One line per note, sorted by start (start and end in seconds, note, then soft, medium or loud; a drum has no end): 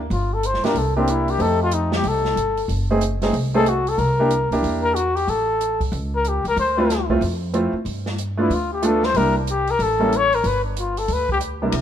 0.10 0.59 G1 medium
0.10 0.35 F4 medium
0.10 kick soft
0.10 open hi-hat soft
0.34 0.48 A4 medium
0.43 0.65 C5 medium
0.43 closed hi-hat soft
0.54 snare soft
0.63 0.74 A#3 medium
0.63 0.74 D4 medium
0.63 0.74 E4 soft
0.63 0.74 G4 medium
0.63 0.79 A#4 medium
0.63 muted upright bass stroke soft
0.63 snare soft
0.63 open hi-hat soft
0.74 1.36 C2 medium
0.74 0.96 A4 medium
0.74 kick soft
0.74 open hi-hat soft
0.96 1.38 A#3 medium
0.96 1.12 C4 medium
0.96 1.38 D4 medium
0.96 1.38 E4 medium
0.96 1.38 G4 medium
1.08 1.32 E4 medium
1.08 closed hi-hat medium
1.28 1.43 G4 medium
1.28 open hi-hat soft
1.39 2.00 F2 medium
1.39 2.29 A3 medium
1.39 2.29 C4 soft
1.39 2.29 D#4 soft
1.39 2.29 G4 medium
1.39 1.61 A4 medium
1.39 kick soft
1.39 open hi-hat soft
1.63 1.76 F4 medium
1.71 1.93 D#4 medium
1.71 closed hi-hat soft
1.92 2.09 G4 medium
1.92 snare soft
2.03 2.34 C2 medium
2.03 kick soft
2.03 open hi-hat soft
2.08 2.71 A4 medium
2.25 snare soft
2.36 2.66 G1 medium
2.36 closed hi-hat soft
2.57 open hi-hat soft
2.68 3.30 F#1 medium
2.68 kick soft
2.68 open hi-hat soft
2.91 3.00 A3 medium
2.91 3.01 C4 medium
2.91 3.01 D#4 medium
2.91 3.01 G#4 medium
3.01 closed hi-hat medium
3.22 3.33 A3 medium
3.22 3.33 C4 medium
3.22 3.33 D#4 medium
3.22 3.33 G#4 medium
3.22 snare soft
3.22 open hi-hat soft
3.33 3.95 C2 medium
3.33 kick soft
3.33 open hi-hat soft
3.55 3.65 A3 medium
3.55 3.65 C4 medium
3.55 3.65 D#4 medium
3.55 3.65 G#4 medium
3.55 3.70 A4 medium
3.66 3.90 F#4 medium
3.66 closed hi-hat soft
3.87 4.00 A4 medium
3.87 open hi-hat soft
3.98 4.47 C2 medium
3.98 4.51 A#4 medium
3.98 kick soft
3.98 open hi-hat soft
4.19 4.29 A#3 medium
4.19 4.30 D4 medium
4.19 4.30 E4 medium
4.19 4.30 G4 medium
4.30 closed hi-hat medium
4.51 4.62 C#2 medium
4.51 4.93 A#3 medium
4.51 4.93 D4 medium
4.51 4.94 E4 medium
4.51 4.94 G4 medium
4.51 open hi-hat soft
4.63 5.24 E2 medium
4.63 kick soft
4.63 open hi-hat soft
4.83 4.96 A#4 medium
4.95 5.17 F#4 medium
4.95 closed hi-hat soft
5.15 5.31 G4 medium
5.15 open hi-hat soft
5.28 5.89 A1 medium
5.28 5.81 A4 medium
5.28 kick soft
5.28 open hi-hat soft
5.61 closed hi-hat soft
5.80 kick medium
5.80 open hi-hat soft
5.92 6.41 C#2 medium
5.92 kick soft
5.92 open hi-hat soft
6.15 6.30 A#4 medium
6.25 6.47 G4 medium
6.25 closed hi-hat soft
6.44 6.55 C#2 medium
6.44 6.57 A#4 medium
6.44 open hi-hat soft
6.57 7.18 D2 medium
6.57 7.07 C5 medium
6.57 kick soft
6.57 open hi-hat soft
6.77 6.88 A3 medium
6.77 6.88 C4 medium
6.77 6.88 E4 medium
6.77 6.88 F4 medium
6.90 snare soft
6.90 closed hi-hat soft
7.10 7.20 A3 medium
7.10 7.20 C4 medium
7.10 7.21 E4 medium
7.10 7.21 F4 medium
7.10 kick medium
7.21 7.70 F2 medium
7.21 kick soft
7.21 open hi-hat soft
7.54 7.72 A3 medium
7.54 7.72 C4 medium
7.54 7.72 E4 medium
7.54 7.72 F4 medium
7.54 closed hi-hat soft
7.73 muted upright bass stroke soft
7.85 8.47 G2 medium
7.85 kick soft
7.85 open hi-hat soft
8.06 snare soft
8.18 closed hi-hat medium
8.38 8.49 A3 medium
8.38 8.49 B3 medium
8.38 8.49 D4 medium
8.38 8.55 E4 medium
8.38 8.49 F4 medium
8.50 9.11 D2 medium
8.50 8.72 F4 medium
8.50 kick soft
8.50 open hi-hat soft
8.73 8.87 G4 medium
8.82 9.01 A3 medium
8.82 9.01 B3 medium
8.82 9.01 D4 medium
8.82 9.01 F4 medium
8.82 9.06 A4 medium
8.82 closed hi-hat medium
9.03 9.18 C5 loud
9.03 snare soft
9.14 9.76 C2 medium
9.14 9.34 G3 medium
9.14 9.34 A#3 medium
9.14 9.34 D4 medium
9.14 9.34 E4 medium
9.14 9.36 A#4 medium
9.14 kick soft
9.14 open hi-hat soft
9.38 9.52 D4 medium
9.47 9.72 G4 medium
9.47 closed hi-hat medium
9.67 9.84 A#4 medium
9.67 open hi-hat soft
9.79 10.41 A1 medium
9.79 10.18 A4 medium
9.79 kick soft
9.79 open hi-hat soft
9.99 10.10 G3 medium
9.99 10.10 A#3 medium
9.99 10.11 C#4 medium
9.99 10.11 E4 medium
10.12 closed hi-hat soft
10.17 10.36 C#5 medium
10.33 10.48 A#4 medium
10.33 open hi-hat soft
10.44 11.05 G1 medium
10.44 10.64 B4 medium
10.44 kick soft
10.44 open hi-hat soft
10.64 10.80 D4 medium
10.77 11.00 F4 medium
10.77 closed hi-hat medium
10.97 11.14 A4 medium
10.97 open hi-hat soft
11.08 11.70 D2 medium
11.08 kick soft
11.08 open hi-hat soft
11.13 11.31 B4 medium
11.29 11.38 G4 medium
11.29 kick medium
11.41 closed hi-hat medium
11.62 11.72 C3 medium
11.62 11.72 G3 medium
11.62 11.73 A#3 soft
11.62 11.72 D4 medium
11.62 11.73 E4 medium
11.72 11.81 C2 medium
11.72 kick soft
11.72 ride medium